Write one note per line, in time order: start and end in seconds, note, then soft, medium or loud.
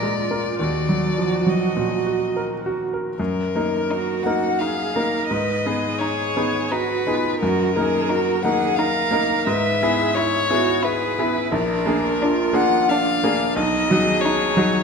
0.00 0.58 A#2 soft
0.00 0.49 G#3 soft
0.00 0.19 A#4 soft
0.00 0.60 D5 medium
0.19 0.64 F4 soft
0.31 0.58 F4 soft
0.31 0.58 A#4 soft
0.60 3.14 D#2 soft
0.60 2.80 F#4 soft
0.60 1.50 D5 medium
0.89 1.36 F#3 soft
1.18 1.48 F3 soft
1.46 1.95 F#3 soft
1.46 2.37 D#5 soft
1.77 2.25 A#2 soft
2.07 2.54 F#4 soft
2.36 2.83 A#4 soft
2.66 3.09 F#4 soft
2.94 3.19 A#4 soft
3.18 3.54 F#2 soft
3.18 4.25 A#4 medium
3.55 4.22 A#3 soft
3.55 4.22 D#4 soft
3.55 4.22 A#4 soft
3.89 4.43 D#4 soft
3.89 4.62 F#4 soft
4.23 4.92 A#3 soft
4.23 4.92 D#4 soft
4.23 4.93 A#4 soft
4.23 4.60 F#5 medium
4.58 5.13 D#4 soft
4.58 4.96 G#4 soft
4.58 5.27 F5 medium
4.95 5.27 A#3 soft
4.95 5.27 D#4 soft
4.95 5.33 A#4 soft
4.95 5.28 A#4 soft
5.28 5.64 G#2 soft
5.28 5.67 B4 medium
5.28 6.01 D#5 medium
5.66 6.32 B3 soft
5.66 6.32 D#4 soft
5.66 6.73 G#4 medium
5.66 6.33 G#4 soft
5.99 6.53 D#4 soft
5.99 6.72 C#5 medium
6.36 7.03 B3 soft
6.36 7.03 D#4 soft
6.36 7.03 G#4 soft
6.71 7.24 D#4 soft
6.71 7.10 F#4 soft
6.71 7.40 B4 medium
7.07 7.38 B3 soft
7.07 7.38 D#4 soft
7.07 7.42 F4 soft
7.07 7.39 G#4 soft
7.40 7.76 F#2 soft
7.40 7.75 F#4 medium
7.40 8.44 A#4 medium
7.76 8.40 A#3 soft
7.76 8.40 D#4 soft
7.76 8.12 G#4 soft
7.76 8.40 A#4 soft
8.10 8.60 D#4 soft
8.10 8.44 F#4 soft
8.42 9.09 A#3 soft
8.42 9.09 D#4 soft
8.42 8.80 G#4 medium
8.42 9.09 A#4 soft
8.42 8.77 F#5 medium
8.76 9.30 D#4 medium
8.76 9.50 A#4 medium
8.76 9.46 F5 medium
9.11 9.43 A#3 soft
9.11 9.44 D#4 soft
9.11 9.44 A#4 soft
9.47 9.81 G#2 medium
9.47 9.85 B4 medium
9.47 10.16 E5 medium
9.82 10.47 B3 soft
9.82 10.47 E4 soft
9.82 10.47 G#4 soft
9.82 10.19 G#4 medium
10.15 10.67 E4 medium
10.15 10.51 E4 medium
10.15 10.86 C#5 medium
10.50 11.14 B3 soft
10.50 11.14 E4 soft
10.50 10.87 F#4 medium
10.50 11.14 G#4 soft
10.83 11.34 E4 medium
10.83 11.22 G#4 medium
10.83 11.52 B4 medium
11.19 11.49 B3 soft
11.19 11.50 E4 soft
11.19 11.55 E4 medium
11.19 11.50 G#4 soft
11.52 11.86 A#1 medium
11.52 12.23 D4 medium
11.52 12.57 A#4 medium
11.86 12.50 A#3 soft
11.86 12.51 D4 soft
11.86 12.51 G#4 soft
12.22 12.72 D4 medium
12.22 12.91 F4 medium
12.53 13.18 A#3 soft
12.53 13.18 D4 soft
12.53 13.18 G#4 soft
12.53 12.91 F#5 medium
12.89 13.57 D4 medium
12.89 13.41 D4 medium
12.89 13.57 F5 medium
13.24 13.54 A#3 soft
13.24 13.54 D4 soft
13.24 13.54 G#4 soft
13.56 13.89 B1 medium
13.56 13.93 D#4 medium
13.56 14.23 D#5 medium
13.91 14.52 F#3 soft
13.91 14.53 D#4 soft
13.91 14.53 F#4 soft
13.91 14.83 G#4 medium
14.22 14.74 D#4 medium
14.22 14.83 C#5 medium
14.57 14.83 F#3 soft
14.57 14.83 D#4 soft
14.57 14.83 F#4 soft